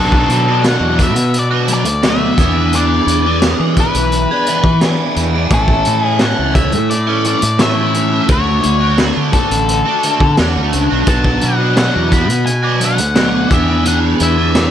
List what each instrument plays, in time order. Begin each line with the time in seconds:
Already playing: fingered electric bass B1, overdriven electric guitar B2 F#3 B3 D4, lead electric guitar A4
0.00 overdriven electric guitar F#4
0.12 kick
0.28 fingered electric bass B2, closed hi-hat
0.48 overdriven electric guitar B3 D4 F#4
0.64 overdriven electric guitar B2 F#3 B3 D4 F#4, lead electric guitar F#5, snare, closed hi-hat
0.80 fingered electric bass E2
0.98 overdriven electric guitar F#3 B3 D4 F#4, kick, closed hi-hat
1.03 lead electric guitar E5
1.14 fingered electric bass B2, muted overdriven electric guitar stroke, closed hi-hat
1.34 closed hi-hat
1.39 lead electric guitar D5
1.51 overdriven electric guitar B3 D4 F#4
1.68 overdriven electric guitar F#3 B3 D4 F#4, closed hi-hat
1.74 lead electric guitar D5
1.84 fingered electric bass D2, muted overdriven electric guitar stroke, closed hi-hat
2.03 overdriven electric guitar B2 F#3 B3 D4 F#4, snare, closed hi-hat
2.08 lead electric guitar E5
2.38 fingered electric bass E2, overdriven electric guitar E3 B3 D4 G#4, kick, snare, closed hi-hat
2.56 overdriven electric guitar B3 D4 G#4
2.73 overdriven electric guitar E3 B3 D4, lead electric guitar D5, closed hi-hat
2.77 overdriven electric guitar G#4
3.06 fingered electric bass E2, closed hi-hat
3.26 overdriven electric guitar B3 D4 G#4
3.42 overdriven electric guitar E3 B3 D4 G#4, snare, closed hi-hat
3.60 fingered electric bass E3
3.76 overdriven electric guitar E3 B3 D4, lead electric guitar B4, kick, closed hi-hat
3.81 overdriven electric guitar G#4
3.94 fingered electric bass B1, muted overdriven electric guitar stroke, closed hi-hat
4.12 closed hi-hat
4.31 overdriven electric guitar B3 D4 G#4
4.46 overdriven electric guitar E3 B3 D4, closed hi-hat
4.51 overdriven electric guitar G#4
4.64 fingered electric bass E3, muted overdriven electric guitar stroke, kick
4.81 overdriven electric guitar E3 B3 D4, snare, closed hi-hat
4.86 overdriven electric guitar G#4
5.16 fingered electric bass E2, closed hi-hat
5.35 overdriven electric guitar B3 D4 G#4
5.50 fingered electric bass A1, overdriven electric guitar A2 E3 A3 C#4, lead electric guitar A4, kick, closed hi-hat
5.54 overdriven electric guitar E4
5.68 kick
5.85 fingered electric bass A2, closed hi-hat
6.03 overdriven electric guitar A3 C#4 E4, lead electric guitar G#4
6.19 overdriven electric guitar A2 E3 A3 C#4 E4, lead electric guitar F#5, snare, closed hi-hat
6.39 fingered electric bass C#2
6.55 overdriven electric guitar E3 A3 C#4 E4, lead electric guitar E5, kick, closed hi-hat
6.72 fingered electric bass A2, muted overdriven electric guitar stroke, closed hi-hat
6.90 lead electric guitar D5, closed hi-hat
7.07 overdriven electric guitar A3 C#4 E4
7.24 overdriven electric guitar E3 A3 C#4 E4, lead electric guitar D5, closed hi-hat
7.42 fingered electric bass A2, muted overdriven electric guitar stroke, closed hi-hat
7.58 overdriven electric guitar A2 E3 A3 C#4 E4, lead electric guitar E5, snare, closed hi-hat
7.94 closed hi-hat
8.10 overdriven electric guitar A3 C#4 E4
8.27 fingered electric bass D2, overdriven electric guitar D3 A3 D4 F#4, kick, closed hi-hat
8.32 lead electric guitar C#5
8.63 fingered electric bass D2, closed hi-hat
8.80 overdriven electric guitar A3 D4 F#4
8.98 overdriven electric guitar D3 A3 D4 F#4, snare, closed hi-hat
9.17 fingered electric bass D3
9.33 overdriven electric guitar D3 A3 D4 F#4, lead electric guitar A4, kick, closed hi-hat
9.50 fingered electric bass A1, muted overdriven electric guitar stroke, closed hi-hat
9.69 closed hi-hat
9.85 overdriven electric guitar A3 D4 F#4
10.03 overdriven electric guitar D3 A3 D4 F#4, closed hi-hat
10.20 fingered electric bass D3, muted overdriven electric guitar stroke, kick
10.37 fingered electric bass E2, overdriven electric guitar D3 A3 D4 F#4, snare, closed hi-hat
10.56 fingered electric bass D2
10.73 fingered electric bass C#2, closed hi-hat
10.90 fingered electric bass B1, overdriven electric guitar A3 D4 F#4
11.07 overdriven electric guitar B2 F#3 B3 D4 F#4, lead electric guitar A5, kick, closed hi-hat
11.24 kick
11.41 fingered electric bass B2, lead electric guitar F#5, closed hi-hat
11.59 overdriven electric guitar B3 D4 F#4
11.77 overdriven electric guitar B2 F#3 B3 D4 F#4, lead electric guitar F#5, snare, closed hi-hat
11.96 fingered electric bass E2
12.12 overdriven electric guitar F#3 B3 D4 F#4, lead electric guitar B5, kick, closed hi-hat
12.28 fingered electric bass B2, muted overdriven electric guitar stroke, closed hi-hat
12.46 lead electric guitar G#5, closed hi-hat
12.63 overdriven electric guitar B3 D4 F#4
12.80 overdriven electric guitar F#3 B3 D4 F#4, closed hi-hat
12.85 lead electric guitar F#5
12.98 fingered electric bass D2, muted overdriven electric guitar stroke, closed hi-hat
13.15 overdriven electric guitar B2 F#3 B3 D4 F#4, snare, closed hi-hat
13.49 fingered electric bass E2, overdriven electric guitar E3 B3 D4 G#4, kick, closed hi-hat
13.54 lead electric guitar E5
13.67 overdriven electric guitar B3 D4 G#4
13.85 overdriven electric guitar E3 B3 D4 G#4, lead electric guitar F#5, closed hi-hat
14.20 fingered electric bass E2, lead electric guitar E5, closed hi-hat
14.37 overdriven electric guitar B3 D4 G#4
14.55 overdriven electric guitar E3 B3 D4 G#4, snare, closed hi-hat